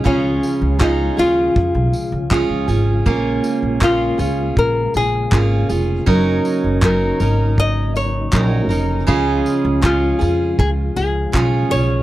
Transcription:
0.00 12.03 C#3 medium
0.00 0.80 C#3 medium
0.00 3.03 F3 medium
0.00 6.04 G#3 medium
0.00 6.04 F4 medium
0.04 0.37 C#2 medium
0.04 0.78 G#3 medium
0.04 0.79 C#4 medium
0.04 0.81 C#4 medium
0.04 0.80 F4 medium
0.04 0.80 G#4 medium
0.04 kick loud
0.43 tambourine medium
0.62 1.08 C#2 medium
0.79 1.18 G#3 medium
0.79 1.18 C#4 medium
0.79 1.20 D#4 loud
0.79 1.17 F4 medium
0.79 1.16 G#4 medium
0.79 kick loud
0.79 clap loud
1.17 1.49 D#2 medium
1.17 2.31 C#4 soft
1.17 2.31 F4 medium
1.17 2.65 F4 loud
1.17 2.32 G#4 medium
1.17 tambourine medium
1.56 1.72 F2 medium
1.56 kick loud
1.75 1.90 B1 medium
1.93 tambourine medium
2.12 2.43 C#2 medium
2.30 2.68 G#3 medium
2.30 2.68 C#4 medium
2.30 2.68 F4 medium
2.30 2.67 G#4 medium
2.30 kick loud
2.30 clap loud
2.49 2.65 C#2 medium
2.68 2.99 G#1 medium
2.68 3.05 C#4 soft
2.68 3.06 F4 medium
2.68 3.06 G#4 medium
2.68 tambourine medium
3.06 3.37 A#1 medium
3.06 3.80 A#3 medium
3.06 9.05 A#3 medium
3.06 3.81 C#4 medium
3.06 3.81 F4 medium
3.06 3.81 G#4 medium
3.06 kick loud
3.44 tambourine medium
3.63 4.09 A#1 medium
3.80 4.19 A#3 medium
3.80 4.19 C#4 medium
3.80 4.18 F4 medium
3.80 4.58 F4 medium
3.80 4.17 G#4 medium
3.80 kick loud
3.80 clap loud
4.18 4.50 C#2 medium
4.18 5.32 C#4 soft
4.18 5.31 F4 medium
4.18 5.32 G#4 medium
4.18 tambourine medium
4.57 4.88 A#1 medium
4.57 4.93 A#4 loud
4.57 kick loud
4.94 5.26 A#1 medium
4.94 6.05 G#4 medium
4.94 tambourine medium
5.32 5.63 G#1 loud
5.32 5.70 A#3 medium
5.32 5.70 C#4 medium
5.32 5.69 F4 medium
5.32 5.68 G#4 medium
5.32 kick loud
5.32 clap loud
5.69 6.01 F1 medium
5.69 6.05 C#4 soft
5.69 6.07 F4 medium
5.69 6.07 G#4 medium
5.69 tambourine medium
6.06 6.38 F#1 medium
6.06 6.81 F#3 medium
6.06 9.06 F#3 medium
6.06 6.83 C#4 loud
6.06 6.83 D#4 medium
6.06 9.06 D#4 medium
6.06 6.83 A#4 medium
6.06 kick loud
6.45 tambourine medium
6.64 7.10 F#1 medium
6.82 7.20 F#3 medium
6.82 7.21 C#4 medium
6.82 7.20 D#4 medium
6.82 7.19 A#4 medium
6.82 7.59 A#4 medium
6.82 kick loud
6.82 clap loud
7.20 8.29 G#1 medium
7.20 8.33 C#4 medium
7.20 8.32 D#4 medium
7.20 8.33 A#4 medium
7.20 tambourine medium
7.58 7.96 D#5 loud
7.58 kick loud
7.96 9.05 C#5 medium
7.96 tambourine medium
8.32 8.70 A#1 loud
8.32 8.70 F#3 medium
8.32 8.70 C#4 medium
8.32 8.69 D#4 medium
8.32 8.68 A#4 medium
8.32 kick medium
8.32 clap loud
8.69 9.01 F1 loud
8.69 9.06 C#4 soft
8.69 9.07 D#4 soft
8.69 9.08 A#4 medium
8.69 tambourine medium
9.07 9.39 C#2 medium
9.07 9.83 C#3 loud
9.07 12.03 F3 medium
9.07 12.03 G#3 medium
9.07 9.81 G#3 medium
9.07 9.82 C#4 loud
9.07 12.03 F4 medium
9.07 9.83 F4 medium
9.07 9.83 G#4 loud
9.07 kick loud
9.46 tambourine medium
9.65 10.11 C#2 medium
9.81 10.20 G#3 medium
9.81 10.20 C#4 medium
9.81 10.19 F4 medium
9.81 10.59 F4 medium
9.81 10.18 G#4 medium
9.81 kick loud
9.81 clap loud
10.19 10.52 F2 loud
10.19 11.33 C#4 soft
10.19 11.34 F4 medium
10.19 11.34 G#4 medium
10.19 tambourine medium
10.59 10.90 C#2 medium
10.59 10.69 G#4 loud
10.59 kick loud
10.96 11.27 C#2 medium
10.96 11.68 G#4 medium
10.96 tambourine medium
11.32 11.65 B1 medium
11.32 11.71 G#3 medium
11.32 11.71 C#4 medium
11.32 11.70 F4 medium
11.32 11.69 G#4 medium
11.32 kick loud
11.32 clap loud
11.70 12.02 B1 medium
11.70 12.03 C#4 soft
11.70 12.03 F4 medium
11.70 12.03 G#4 soft
11.70 12.03 C#5 medium
11.70 tambourine medium

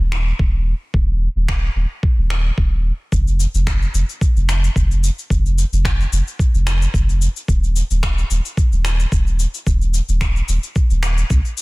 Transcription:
0.00 0.32 D#1 medium
0.12 finger snap medium
0.39 0.73 D#1 medium
0.39 kick loud
0.94 1.28 D#1 medium
0.94 kick medium
1.36 1.69 D#1 medium
1.48 finger snap medium
1.48 kick medium
1.75 1.85 D#1 medium
2.03 kick loud
2.18 2.50 D#1 medium
2.30 finger snap medium
2.58 2.91 D#1 medium
2.58 kick medium
3.12 3.46 F1 loud
3.12 kick medium
3.12 cabasa soft
3.27 cabasa soft
3.40 cabasa medium
3.54 3.87 F1 medium
3.54 cabasa soft
3.67 finger snap medium
3.67 kick medium
3.67 cabasa soft
3.82 cabasa soft
3.94 4.03 F1 medium
3.94 cabasa medium
4.09 cabasa soft
4.21 kick loud
4.21 cabasa soft
4.36 4.69 F1 medium
4.36 cabasa soft
4.49 finger snap medium
4.49 cabasa medium
4.64 cabasa soft
4.76 5.09 F1 medium
4.76 kick loud
4.76 cabasa soft
4.91 cabasa soft
5.04 cabasa medium
5.19 cabasa soft
5.30 5.64 F1 medium
5.30 kick medium
5.30 cabasa soft
5.46 cabasa soft
5.58 cabasa medium
5.72 6.05 F1 medium
5.72 cabasa soft
5.85 finger snap medium
5.85 kick medium
5.85 cabasa soft
6.00 cabasa soft
6.12 6.22 F1 medium
6.12 cabasa medium
6.28 cabasa soft
6.39 kick medium
6.39 cabasa soft
6.54 6.87 F1 medium
6.54 cabasa soft
6.67 finger snap medium
6.67 cabasa medium
6.82 cabasa soft
6.94 7.28 F1 medium
6.94 kick medium
6.94 cabasa soft
7.09 cabasa soft
7.22 cabasa medium
7.36 cabasa soft
7.48 7.82 D#1 loud
7.48 kick loud
7.48 cabasa soft
7.64 cabasa soft
7.76 cabasa medium
7.90 8.23 D#1 medium
7.90 cabasa soft
8.03 finger snap medium
8.03 kick medium
8.03 cabasa soft
8.18 cabasa soft
8.30 8.40 D#1 medium
8.30 cabasa medium
8.45 cabasa soft
8.57 kick medium
8.57 cabasa soft
8.72 9.05 D#1 medium
8.72 cabasa soft
8.85 finger snap medium
8.85 cabasa medium
9.00 cabasa soft
9.12 9.46 D#1 medium
9.12 kick medium
9.12 cabasa soft
9.27 cabasa soft
9.40 cabasa medium
9.54 cabasa soft
9.67 10.00 D#1 medium
9.67 kick medium
9.67 cabasa soft
9.81 cabasa soft
9.94 cabasa medium
10.08 10.41 D#1 medium
10.08 cabasa soft
10.21 finger snap medium
10.21 kick medium
10.21 cabasa soft
10.36 cabasa soft
10.48 10.58 D#1 medium
10.48 cabasa medium
10.63 cabasa soft
10.76 kick medium
10.76 cabasa soft
10.90 11.23 D#1 medium
10.90 cabasa soft
11.03 finger snap medium
11.03 cabasa medium
11.18 cabasa soft
11.30 11.40 C2 medium
11.30 kick medium
11.30 cabasa soft
11.45 cabasa soft
11.58 cabasa medium

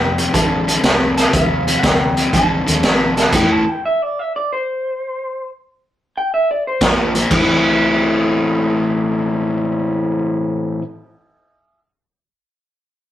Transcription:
0.00 0.26 F1 medium
0.00 0.15 F2 medium
0.00 0.15 C3 medium
0.00 0.33 G5 loud
0.18 0.32 F2 medium
0.18 0.33 C3 medium
0.18 closed hi-hat medium
0.34 0.76 A1 medium
0.34 0.64 F2 medium
0.34 0.65 D3 medium
0.34 1.16 A5 loud
0.34 kick medium
0.34 closed hi-hat medium
0.67 0.82 F2 medium
0.67 0.82 D3 medium
0.67 closed hi-hat medium
0.83 1.25 C2 medium
0.83 1.14 F2 medium
0.83 1.14 C3 medium
0.83 snare loud
0.83 closed hi-hat medium
1.17 1.32 F2 medium
1.17 1.32 C3 medium
1.17 1.33 A5 medium
1.17 snare soft
1.17 closed hi-hat medium
1.33 1.75 D#2 medium
1.33 1.64 F2 medium
1.33 1.64 C3 medium
1.33 1.79 F5 medium
1.33 kick loud
1.33 closed hi-hat medium
1.67 1.82 F2 medium
1.67 1.82 C3 medium
1.67 closed hi-hat medium
1.79 1.83 F#5 medium
1.79 closed hi-hat medium
1.83 2.25 D2 medium
1.83 2.14 F2 medium
1.83 2.14 C3 medium
1.83 2.33 G5 loud
1.83 kick medium
1.83 snare loud
2.17 2.31 F2 medium
2.17 2.32 C3 medium
2.17 closed hi-hat medium
2.33 2.61 A1 medium
2.33 2.64 F2 medium
2.33 2.64 D3 medium
2.33 3.17 A5 loud
2.33 kick medium
2.33 closed hi-hat medium
2.66 2.81 D#2 medium
2.66 2.81 F2 medium
2.66 2.81 D3 medium
2.66 closed hi-hat medium
2.83 3.25 G#1 medium
2.83 3.13 F2 medium
2.83 3.14 C3 medium
2.83 snare loud
2.83 closed hi-hat medium
3.17 3.31 F2 medium
3.17 3.32 C3 medium
3.17 3.34 A5 medium
3.17 snare soft
3.17 closed hi-hat medium
3.32 3.61 A1 medium
3.32 3.64 A2 medium
3.32 3.64 E3 medium
3.32 3.50 G5 loud
3.32 kick loud
3.32 closed hi-hat medium
3.32 crash medium
3.52 3.69 A5 medium
3.69 3.84 G5 medium
3.85 4.02 E5 loud
4.02 4.19 D5 loud
4.19 4.34 E5 medium
4.36 4.50 D5 medium
4.53 5.47 C5 medium
6.17 6.32 G5 medium
6.34 6.49 E5 medium
6.51 6.65 D5 medium
6.67 6.82 C5 medium
6.81 7.23 A#1 medium
6.81 7.12 A#2 medium
6.81 7.12 F3 medium
6.81 7.15 F4 medium
6.81 kick medium
6.81 snare loud
6.81 closed hi-hat medium
7.15 7.29 A#2 medium
7.15 7.30 F3 medium
7.15 closed hi-hat medium
7.30 10.52 A1 medium
7.30 10.80 A2 medium
7.30 10.81 E3 loud
7.30 10.82 C4 medium
7.30 kick medium
7.30 crash medium
7.34 10.84 E4 loud

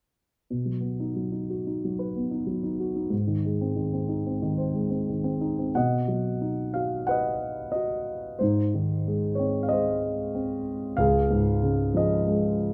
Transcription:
0.50 3.09 B2 soft
0.66 1.14 F#3 soft
0.80 2.10 B3 soft
1.00 1.30 D#4 soft
1.16 1.83 F#3 soft
1.32 1.65 D#4 soft
1.50 2.76 F#4 soft
1.67 2.30 D#4 soft
1.85 2.45 F#3 soft
1.99 3.09 B4 soft
2.16 3.10 B3 soft
2.31 2.62 D#4 soft
2.47 3.10 F#3 soft
2.63 2.94 D#4 soft
2.80 3.11 F#4 soft
2.96 3.12 D#4 soft
3.10 5.70 G#2 soft
3.27 3.75 D#3 soft
3.45 4.70 G#3 soft
3.61 3.92 C4 soft
3.76 4.41 D#3 soft
3.93 4.25 C4 soft
4.09 5.37 D#4 soft
4.26 4.89 C4 soft
4.42 5.08 D#3 soft
4.58 5.72 C5 soft
4.74 5.72 G#3 soft
4.91 5.23 C4 soft
5.09 5.74 D#3 soft
5.24 5.57 C4 soft
5.41 5.74 D#4 soft
5.59 5.75 C4 soft
5.75 8.37 B2 soft
5.75 7.05 D#5 soft
5.75 6.78 F#5 medium
6.08 7.37 F#3 soft
6.41 7.70 D#4 soft
6.74 7.74 F#4 soft
6.74 7.08 F5 medium
7.07 8.37 B4 soft
7.07 7.70 F#5 medium
7.11 7.70 D#5 soft
7.72 8.39 F#4 soft
7.72 8.41 D#5 medium
8.39 10.95 G#2 soft
8.39 9.40 C5 medium
8.43 9.68 D#4 soft
8.74 10.00 D#3 soft
9.07 9.70 G#3 soft
9.35 9.61 C#5 medium
9.39 10.33 C4 soft
9.63 9.70 F5 soft
9.69 10.95 G#3 soft
9.69 10.95 C5 soft
9.69 10.62 D#5 medium
10.35 10.97 C4 soft
10.97 12.73 C#2 soft
10.97 11.95 G#4 medium
10.97 11.57 F5 medium
11.31 12.56 G#2 soft
11.63 12.73 C#3 soft
11.94 12.73 F3 soft
11.94 12.73 G#4 soft
11.94 12.73 D#5 medium
12.27 12.73 G#3 soft

